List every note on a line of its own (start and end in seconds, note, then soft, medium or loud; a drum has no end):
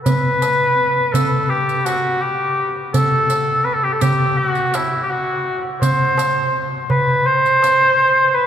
0.05 1.14 B4 loud
0.05 riq medium
0.05 darbuka dum medium
0.42 riq soft
0.42 darbuka tek medium
1.13 1.51 A4 medium
1.13 riq medium
1.13 darbuka dum medium
1.32 darbuka ka soft
1.50 1.87 G4 medium
1.50 darbuka ka soft
1.69 riq soft
1.85 2.23 F#4 medium
1.85 riq soft
1.85 darbuka tek medium
2.04 darbuka ka soft
2.21 2.76 G4 medium
2.21 darbuka ka soft
2.58 darbuka ka soft
2.76 darbuka ka soft
2.94 3.66 A4 loud
2.94 riq medium
2.94 darbuka dum medium
3.30 riq soft
3.30 darbuka tek medium
3.65 3.75 B4 medium
3.74 3.85 A4 medium
3.84 3.94 G4 medium
3.92 4.03 A4 medium
4.01 4.39 G4 medium
4.01 riq medium
4.01 darbuka dum medium
4.21 darbuka ka soft
4.37 4.76 F#4 medium
4.37 darbuka ka soft
4.55 riq soft
4.74 5.02 E4 medium
4.74 riq medium
4.74 darbuka tek medium
4.93 darbuka ka soft
5.03 5.12 G4 medium
5.10 5.64 F#4 medium
5.10 darbuka ka soft
5.47 darbuka ka soft
5.65 darbuka ka soft
5.81 6.59 C5 loud
5.81 riq medium
5.81 darbuka dum medium
6.18 riq medium
6.18 darbuka tek medium
6.90 7.28 B4 loud
6.90 darbuka dum medium
7.09 darbuka ka soft
7.26 8.36 C5 loud
7.26 darbuka ka soft
7.46 riq soft
7.62 riq medium
7.62 darbuka tek medium
7.81 darbuka ka soft
7.98 darbuka ka soft
8.34 8.47 B4 loud
8.34 darbuka ka soft